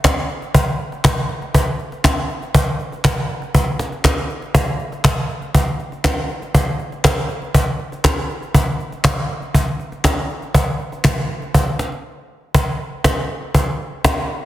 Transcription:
0.04 cajon bass, cajon slap, clap
0.17 cajon slap
0.30 cajon slap
0.42 cajon slap
0.55 cajon bass
0.67 cajon slap
0.79 cajon slap
0.92 cajon slap
1.04 cajon bass, cajon slap, clap
1.17 cajon slap
1.29 cajon slap
1.42 cajon slap
1.54 cajon bass
1.67 cajon slap
1.80 cajon slap
1.92 cajon slap
2.04 cajon bass, cajon slap, clap
2.17 cajon slap
2.30 cajon slap
2.42 cajon slap
2.55 cajon bass
2.67 cajon slap
2.79 cajon slap
2.92 cajon slap
3.04 cajon bass, cajon slap, clap
3.17 cajon slap
3.29 cajon slap
3.42 cajon slap
3.55 cajon bass
3.67 cajon slap
3.79 cajon slap
3.92 cajon slap
4.04 cajon bass, cajon slap, clap
4.17 cajon slap
4.30 cajon slap
4.42 cajon slap
4.55 cajon bass
4.67 cajon slap
4.79 cajon slap
4.92 cajon slap
5.04 cajon bass, cajon slap, clap
5.17 cajon slap
5.29 cajon slap
5.42 cajon slap
5.55 cajon bass
5.67 cajon slap
5.80 cajon slap
5.92 cajon slap
6.04 cajon bass, cajon slap, clap
6.17 cajon slap
6.30 cajon slap
6.42 cajon slap
6.55 cajon bass
6.67 cajon slap
6.79 cajon slap
6.92 cajon slap
7.04 cajon bass, cajon slap, clap
7.17 cajon slap
7.29 cajon slap
7.42 cajon slap
7.54 cajon bass
7.67 cajon slap
7.80 cajon slap
7.92 cajon slap
8.04 cajon bass, cajon slap, clap
8.17 cajon slap
8.30 cajon slap
8.42 cajon slap
8.55 cajon bass
8.67 cajon slap
8.80 cajon slap
8.92 cajon slap
9.04 cajon bass, cajon slap, clap
9.17 cajon slap
9.29 cajon slap
9.42 cajon slap
9.54 cajon bass
9.67 cajon slap
9.80 cajon slap
9.92 cajon slap
10.04 cajon bass, cajon slap, clap
10.17 cajon slap
10.30 cajon slap
10.42 cajon slap
10.55 cajon bass
10.67 cajon slap
10.80 cajon slap
10.92 cajon slap
11.04 cajon bass, cajon slap, clap
11.17 cajon slap
11.29 cajon slap
11.42 cajon slap
11.55 cajon bass
11.67 cajon slap
11.79 cajon slap
11.92 cajon slap
12.55 cajon bass
13.04 cajon bass, cajon slap
13.55 cajon bass
14.04 cajon bass, cajon slap

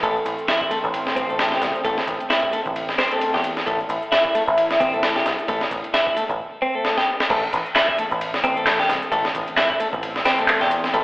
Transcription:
Already playing: E3 A3
0.03 A1 A3 C4, kick, ride, shaker
0.16 shaker
0.25 A1, ride, shaker
0.38 shaker
0.48 E4, snare, ride, shaker
0.61 E4, kick, shaker
0.71 A3, ride, shaker
0.84 A1, shaker
0.94 ride, shaker
1.07 snare, shaker
1.16 A1 C4, kick, ride, shaker
1.29 A3, shaker
1.39 snare, ride, shaker
1.52 G4, snare, shaker
1.62 C2, snare, ride, shaker
1.75 shaker
1.85 A1 A3, kick, ride, shaker
1.98 snare, shaker
2.07 A1, kick, ride, shaker
2.21 ride, shaker
2.30 E4, snare, ride, shaker
2.43 E4, kick, shaker
2.53 A3, ride, shaker
2.66 A1, kick, shaker
2.76 ride, shaker
2.88 snare, shaker
2.98 C4, snare, ride, shaker
3.11 A3, ride, shaker
3.21 ride, shaker
3.34 E2 G4, snare, shaker
3.44 ride, shaker
3.57 snare, shaker
3.66 A1 A3 E4, kick, ride, shaker
3.79 shaker
3.89 A1, ride, shaker
4.02 shaker
4.12 E4, snare, ride, shaker
4.25 E4, kick, shaker
4.35 A3, ride, shaker
4.48 A1, shaker
4.58 ride, shaker
4.70 snare, shaker
4.80 A1 C4, kick, ride, shaker
4.93 A3, shaker
5.03 snare, ride, shaker
5.16 G4, snare, shaker
5.26 C2, snare, ride, shaker
5.39 shaker
5.48 A1 A3, kick, ride, shaker
5.61 snare, shaker
5.71 A1, kick, ride, shaker
5.84 ride, shaker
5.94 E4, snare, ride, shaker
6.07 E4, kick, shaker
6.17 A3, ride, shaker
6.29 A1, kick, shaker
6.62 C4
6.75 A3
6.85 snare
6.98 G4, snare
7.20 snare
7.30 A1 E3 A3 C4, kick, crash, ride, shaker
7.43 shaker
7.53 A1, ride, shaker
7.66 shaker
7.76 E4, snare, clap, ride, shaker
7.89 E4, kick, shaker
7.98 A3, ride, shaker
8.11 A1, shaker
8.21 ride, shaker
8.34 snare, shaker
8.44 A1 C4, kick, ride, shaker
8.57 A3, shaker
8.67 snare, clap, ride, shaker
8.79 G4, snare, shaker
8.89 C2, snare, ride, shaker
9.02 shaker
9.12 A1 A3, kick, ride, shaker
9.25 snare, shaker
9.35 A1, kick, ride, shaker
9.48 ride, shaker
9.57 E4, snare, clap, ride, shaker
9.70 E4, kick, shaker
9.80 A3, ride, shaker
9.93 A1, kick, shaker
10.03 ride, shaker
10.16 snare, shaker
10.25 C4, snare, ride, shaker
10.38 A3, ride, shaker
10.48 clap, ride, shaker
10.61 E2 G4, snare, shaker
10.71 ride, shaker
10.84 snare, shaker
10.94 A1 A3, kick, ride, shaker

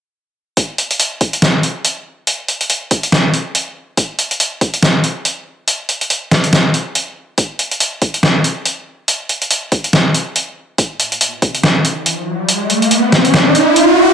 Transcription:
0.57 kick, closed hi-hat
0.78 closed hi-hat
0.91 closed hi-hat
1.00 closed hi-hat
1.21 kick, closed hi-hat
1.33 closed hi-hat
1.42 snare, closed hi-hat
1.63 closed hi-hat
1.85 closed hi-hat
2.27 closed hi-hat
2.48 closed hi-hat
2.61 closed hi-hat
2.70 closed hi-hat
2.91 kick, closed hi-hat
3.03 closed hi-hat
3.12 snare, closed hi-hat
3.34 closed hi-hat
3.55 closed hi-hat
3.97 kick, closed hi-hat
4.19 closed hi-hat
4.31 closed hi-hat
4.40 closed hi-hat
4.61 kick, closed hi-hat
4.74 closed hi-hat
4.83 snare, closed hi-hat
5.04 closed hi-hat
5.25 closed hi-hat
5.68 closed hi-hat
5.89 closed hi-hat
6.01 closed hi-hat
6.10 closed hi-hat
6.31 kick, snare, closed hi-hat
6.44 closed hi-hat
6.53 snare, closed hi-hat
6.74 closed hi-hat
6.95 closed hi-hat
7.38 kick, closed hi-hat
7.59 closed hi-hat
7.71 closed hi-hat
7.80 closed hi-hat
8.02 kick, closed hi-hat
8.14 closed hi-hat
8.23 snare, closed hi-hat
8.44 closed hi-hat
8.65 closed hi-hat
9.08 closed hi-hat
9.29 closed hi-hat
9.42 closed hi-hat
9.51 closed hi-hat
9.72 kick, closed hi-hat
9.84 closed hi-hat
9.93 snare, closed hi-hat
10.14 closed hi-hat
10.36 closed hi-hat
10.78 kick, closed hi-hat, riser
11.00 closed hi-hat
11.12 closed hi-hat
11.21 closed hi-hat
11.42 kick, closed hi-hat
11.55 closed hi-hat
11.63 snare, closed hi-hat
11.85 closed hi-hat
12.06 closed hi-hat
12.49 closed hi-hat
12.70 closed hi-hat
12.82 closed hi-hat
12.91 closed hi-hat
13.12 kick, snare, closed hi-hat
13.25 closed hi-hat
13.34 snare, closed hi-hat
13.55 closed hi-hat
13.76 closed hi-hat

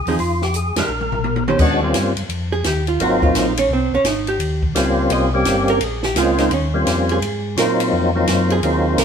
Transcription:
Already playing: G#4
0.06 E2 F3 C4 D#4 G#4, open hi-hat
0.19 F2 F4, open hi-hat
0.42 G4, snare
0.54 G#4, closed hi-hat
0.76 F2 G#3 D4 G4 A#4, snare, ride
0.88 A#1
1.01 mid tom
1.12 floor tom
1.24 high tom
1.36 high tom
1.48 D#3 C#4 G4 C5, high tom
1.59 D#2 G#3 B3 C#4 D4 F#4, kick, crash
1.82 G3 A#3 C4 C#4 F4
1.93 G2, snare, hi-hat pedal, ride
2.16 G2, ride
2.29 F2, ride
2.52 G#4
2.64 D#2 G4, snare, hi-hat pedal, ride
2.87 F4, ride
2.99 G#1 F#3 A#3 C4 D#4 F4 F#4, ride
3.22 F4, kick
3.34 A#1 D#4, snare, hi-hat pedal, ride
3.57 C#4, ride
3.69 C2
3.73 C4
3.92 C2 C#4
4.04 G#1 D#4, snare, hi-hat pedal, ride
4.27 G4, ride
4.39 D#2, ride
4.63 kick
4.74 C#2 G3 A#3 C4 C#4 F4, snare, hi-hat pedal, ride
5.10 C2 D#5, ride
5.34 G3 A#3 C4 C#4 G4
5.45 G1, snare, hi-hat pedal, ride
5.68 A#4, ride
5.80 A#1 G#4, ride
6.03 G4, snare
6.15 C#2 G#3 A#3 C4 C#4 F4, snare, hi-hat pedal, ride
6.38 D#4, snare, ride
6.50 D#2 C#4, ride
6.74 G3 A#3 C4 C#4 F4
6.86 F2, snare, hi-hat pedal, ride
7.09 G#4, ride
7.21 G#2, ride
7.57 A#2 F#3 A#3 C4 D#4 F4 A#4, snare, hi-hat pedal, ride
7.80 ride
7.92 F2
8.15 F#3 A#3 C4 D#4 F4
8.27 F#2, snare, hi-hat pedal, ride
8.50 G#4, ride
8.63 D#2 F#3 A#3 C4 D#4 F4, ride
8.97 C#2 A#4, snare, hi-hat pedal, ride

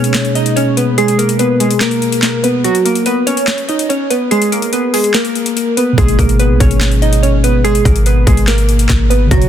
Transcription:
Already playing: B2 G#3 A#3 C#4 D#4 G#4 C#5
0.04 closed hi-hat
0.14 snare, clap, closed hi-hat
0.25 closed hi-hat
0.35 D#4 D#5, closed hi-hat
0.46 closed hi-hat
0.56 C#4 C#5, closed hi-hat
0.77 B3 B4, closed hi-hat
0.98 G#3 G#4, closed hi-hat
1.08 closed hi-hat
1.18 A#3 A#4, closed hi-hat
1.29 closed hi-hat
1.39 B3 B4, closed hi-hat
1.60 G#3 G#4, closed hi-hat
1.71 closed hi-hat
1.81 A#3 A#4, snare, clap, closed hi-hat
1.91 closed hi-hat
2.02 closed hi-hat
2.12 closed hi-hat
2.23 snare, clap, closed hi-hat
2.44 B3 B4, closed hi-hat
2.64 F#3 F#4, closed hi-hat
2.75 closed hi-hat
2.85 A#3 A#4, closed hi-hat
2.95 closed hi-hat
3.06 B3 B4, closed hi-hat
3.27 C#4 C#5, closed hi-hat
3.37 closed hi-hat
3.48 snare, clap, closed hi-hat
3.58 closed hi-hat
3.69 D#4 D#5, closed hi-hat
3.79 closed hi-hat
3.89 C#4 C#5, closed hi-hat
4.10 B3 B4, closed hi-hat
4.31 G#3 G#4, closed hi-hat
4.42 closed hi-hat
4.52 A#3 A#4, closed hi-hat
4.62 closed hi-hat
4.73 B3 B4, closed hi-hat
4.94 G#3 G#4, open hi-hat
5.04 closed hi-hat
5.14 A#3 A#4, snare, clap, closed hi-hat
5.25 closed hi-hat
5.35 closed hi-hat
5.46 closed hi-hat
5.57 closed hi-hat
5.77 B3 B4, closed hi-hat
5.93 B2 G#3
5.98 G#1 G#3 A#3 D#4 G#4, kick, closed hi-hat
6.04 G#4
6.08 closed hi-hat
6.19 G#1 A#3 A#4, kick, closed hi-hat
6.29 closed hi-hat
6.40 B3 B4, closed hi-hat
6.50 A#1
6.60 G#1 C#4 C#5, kick, closed hi-hat
6.71 closed hi-hat
6.81 snare, clap, closed hi-hat
6.92 closed hi-hat
7.02 D#4 D#5, closed hi-hat
7.13 closed hi-hat
7.23 C#4 C#5, closed hi-hat
7.44 B3 B4, closed hi-hat
7.64 G#3 G#4, closed hi-hat
7.75 closed hi-hat
7.85 G#1 A#3 A#4, kick, closed hi-hat
7.96 closed hi-hat
8.06 B3 B4, closed hi-hat
8.27 G#1 G#3 G#4, kick, closed hi-hat
8.37 closed hi-hat
8.48 A#3 A#4, snare, clap, closed hi-hat
8.58 closed hi-hat
8.69 closed hi-hat
8.79 closed hi-hat
8.89 G#1, kick, snare, clap, closed hi-hat
9.10 B3 B4, closed hi-hat
9.26 C#3 F#3
9.31 F#1 B2 F#3 F#4, kick, closed hi-hat
9.37 C#5
9.42 closed hi-hat

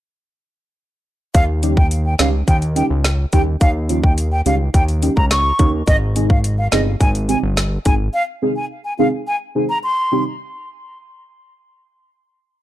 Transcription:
1.34 D#2 F5, kick, closed hi-hat
1.63 C#4 D#4 G4, closed hi-hat
1.77 G5, kick
1.91 closed hi-hat
2.06 G5
2.19 C#2 C#4 D#4 G4 F5, snare, closed hi-hat
2.48 D#2 G5, kick, closed hi-hat
2.62 closed hi-hat
2.76 C#4 D#4 G4 G5, closed hi-hat
2.90 C#2
3.04 snare, closed hi-hat
3.33 D#2 C#4 D#4 G4 G5, kick, closed hi-hat
3.61 D#2 F5, kick, closed hi-hat
3.89 C#4 D#4 F4, closed hi-hat
4.04 G5, kick
4.18 closed hi-hat
4.32 G5
4.46 C#2 C#4 D#4 G4 F5, closed hi-hat
4.74 D#2 G5, kick, closed hi-hat
4.88 closed hi-hat
5.02 C#4 D#4 G4, closed hi-hat
5.17 C#2 A#5, kick
5.31 C#6, snare, closed hi-hat
5.59 D#2 C#4 D#4 A#4, kick, closed hi-hat
5.87 G#1 D#5, kick, closed hi-hat
6.16 C4 D#4 G#4, closed hi-hat
6.30 F5, kick
6.44 closed hi-hat
6.58 F5
6.72 G1 C4 D#4 G#4 D#5, snare, closed hi-hat
7.01 G#1 G#5, kick, closed hi-hat
7.15 closed hi-hat
7.29 C4 D#4 G4 G#5, closed hi-hat
7.43 G1
7.57 snare, closed hi-hat
7.85 G#1 C4 D#4 G#4 G#5, kick, closed hi-hat
8.14 F5
8.42 C4 D#4 G#4
8.56 G#5
8.85 G#5
8.99 C4 D#4 G#4 F5
9.27 G#5
9.55 C4 D#4 G#4
9.69 A#5
9.84 C6
10.12 C4 D#4 G4

